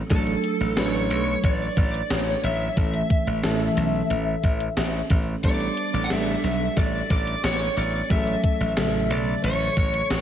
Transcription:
Already playing: fm electric piano F#3 A3 C#4 A4
0.10 slap bass A1, fm electric piano F#3 A3 D4 A4, lead electric guitar A4, kick, closed hi-hat
0.27 closed hi-hat
0.44 closed hi-hat
0.60 slap bass A1
0.77 slap bass A1, fm electric piano F#3 A3 D4 B4, lead electric guitar C#5, snare, closed hi-hat
1.10 slap bass B1, closed hi-hat
1.44 slap bass A1, lead electric guitar D5, kick, closed hi-hat
1.77 slap bass A1, kick, closed hi-hat
1.94 closed hi-hat
2.10 slap bass A1, lead electric guitar C#5, snare, closed hi-hat
2.44 slap bass A1, lead electric guitar E5, closed hi-hat
2.76 slap bass A1, fm electric piano E3 A3 C#4 A4, kick, closed hi-hat
2.94 closed hi-hat
3.10 kick, closed hi-hat
3.27 slap bass A1
3.43 slap bass A1, fm electric piano E3 A3 C#4 A4, snare, closed hi-hat
3.77 slap bass B1, closed hi-hat
4.10 slap bass A1, closed hi-hat
4.44 slap bass A1, kick, closed hi-hat
4.60 closed hi-hat
4.77 slap bass A1, snare, closed hi-hat
5.10 slap bass A1, kick, closed hi-hat
5.43 slap bass A1, fm electric piano G3 B3 D4 A4, lead electric guitar D5, kick, closed hi-hat
5.60 closed hi-hat
5.77 closed hi-hat
5.94 slap bass A1
6.04 lead electric guitar F#5
6.10 slap bass A1, fm electric piano G3 B3 D4 A4, lead electric guitar E5, snare, closed hi-hat
6.44 slap bass B1, closed hi-hat
6.77 slap bass A1, lead electric guitar D5, kick, closed hi-hat
7.10 slap bass A1, lead electric guitar D5, kick, closed hi-hat
7.27 closed hi-hat
7.44 slap bass A1, lead electric guitar C#5, snare, closed hi-hat
7.77 slap bass A1, lead electric guitar D5, closed hi-hat
8.10 slap bass A1, fm electric piano F#3 A3 C#4 G#4, lead electric guitar E5, kick, closed hi-hat
8.17 fm electric piano A4
8.27 closed hi-hat
8.44 kick, closed hi-hat
8.60 slap bass A1
8.76 slap bass A1, fm electric piano C#3 F#3 A3 A4, snare, closed hi-hat
9.10 slap bass B1, lead electric guitar D5, closed hi-hat
9.44 slap bass A1, lead electric guitar C#5, closed hi-hat
9.77 slap bass A1, kick, closed hi-hat
9.94 closed hi-hat
10.10 slap bass A1, snare, closed hi-hat

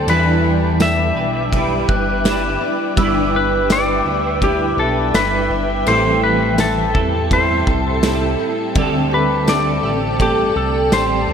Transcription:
Already playing: twelve-string acoustic guitar A3 C4 G4, clean electric guitar G4 A4
0.07 analog synth bass E2, clean electric guitar E3 G3 D4 E4, twelve-string acoustic guitar E3 B4, ambient pad B4 E5 G5 D6, electric slide guitar B4, ride
0.12 clean electric guitar B4
0.44 twelve-string acoustic guitar E4
0.80 twelve-string acoustic guitar D4, electric slide guitar E5, snare, ride, tambourine
1.15 analog synth bass B1, twelve-string acoustic guitar E4, clean electric guitar B4
1.19 clean electric guitar D4 E4
1.52 clean electric guitar G3 D4 E4, twelve-string acoustic guitar G3, kick, ride
1.57 clean electric guitar B4
1.88 analog synth bass G1, twelve-string acoustic guitar B4, glockenspiel F#6, kick
2.24 clean electric guitar G3 D4, twelve-string acoustic guitar E4, snare, ride, tambourine
2.28 clean electric guitar E4 B4
2.61 twelve-string acoustic guitar D4
2.96 analog synth bass G1, clean electric guitar G3 D4, twelve-string acoustic guitar G3 B4, glockenspiel E6, kick, ride
3.01 clean electric guitar E4 B4
3.34 twelve-string acoustic guitar E4, electric slide guitar B4
3.70 twelve-string acoustic guitar D4, electric slide guitar D5, snare, ride, tambourine
4.05 analog synth bass D2, twelve-string acoustic guitar E4
4.41 clean electric guitar G3 D4 E4, twelve-string acoustic guitar D4, electric slide guitar G4, kick, ride
4.46 clean electric guitar B4
4.77 analog synth bass B1, electric slide guitar A4, twelve-string acoustic guitar B4
5.14 analog synth bass G1, clean electric guitar G3 D4 E4, twelve-string acoustic guitar E4, electric slide guitar B4, snare, ride, tambourine
5.19 clean electric guitar B4
5.50 analog synth bass G1, twelve-string acoustic guitar D4
5.86 analog synth bass A1, clean electric guitar A2 E3 G3 C4 E4 A4, twelve-string acoustic guitar A2 A4, ambient pad A4 A5, electric slide guitar C5, ride
6.23 twelve-string acoustic guitar E4, electric slide guitar B4
6.58 twelve-string acoustic guitar C4, electric slide guitar A4, snare, ride, tambourine
6.94 analog synth bass E2, clean electric guitar C4 E4 A4, twelve-string acoustic guitar E4, kick
6.99 clean electric guitar G3
7.30 clean electric guitar G3 C4 E4, twelve-string acoustic guitar G3, electric slide guitar C5, kick, ride
7.35 clean electric guitar A4
7.67 analog synth bass C2, twelve-string acoustic guitar A4, kick
8.02 clean electric guitar G3 C4 E4, twelve-string acoustic guitar E4, snare, ride, tambourine
8.07 clean electric guitar A4
8.39 twelve-string acoustic guitar C4
8.75 analog synth bass D2, twelve-string acoustic guitar D3 A4, clean electric guitar D3 G3 C4 G4 A4, ambient pad D5 G5 A5, kick, ride
9.11 twelve-string acoustic guitar G4, electric slide guitar B4, glockenspiel D6
9.47 twelve-string acoustic guitar C4, electric slide guitar D5, snare, ride, tambourine
9.82 analog synth bass A1, twelve-string acoustic guitar G4, clean electric guitar G4 A4
9.87 clean electric guitar C4
10.19 clean electric guitar G3 C4 G4, twelve-string acoustic guitar A3, electric slide guitar G4, kick, ride
10.24 clean electric guitar A4
10.56 analog synth bass C2, twelve-string acoustic guitar A4, electric slide guitar A4
10.91 analog synth bass A1, clean electric guitar G3 C4 G4, twelve-string acoustic guitar G4, electric slide guitar C5, snare, ride, tambourine
10.96 clean electric guitar A4
11.28 analog synth bass D2, twelve-string acoustic guitar C4

